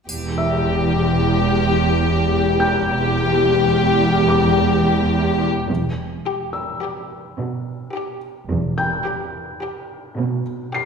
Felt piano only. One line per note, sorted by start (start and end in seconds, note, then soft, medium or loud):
0.38 2.01 E5 soft
0.38 2.01 E6 soft
2.60 4.24 G5 soft
2.60 4.25 G6 soft
4.29 5.65 D6 soft
6.53 8.17 E6 soft
8.78 10.42 G5 soft
8.78 10.42 G6 soft
10.74 10.85 C7 soft